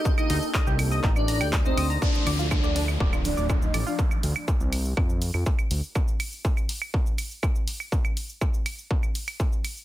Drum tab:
HH |--o---o---oo--o-|--o---o---o---o-|--o---o---o---o-|--o---o---o---o-|
SH |xxxxxxxxxxxxxxxx|xxxxxxxx-xxxxxxx|xxxxxxxx-xxxxxxx|xxxxxxxx-xxxxxxx|
CL |-x--x-x--x-x--x-|--x-x--x-x--x-x-|-x-x--x-x--x-x--|x-x--x-x--x-x--x|
CP |----x---x---x---|----------------|----------------|----------------|
BD |o---o---o---o---|o---o---o---o---|o---o---o---o---|o---o---o---o---|

HH |--o---o---oo--o-|
SH |xxxxxxxx-xxxxxxx|
CL |-x--x-x--x-x--x-|
CP |----------------|
BD |o---o---o---o---|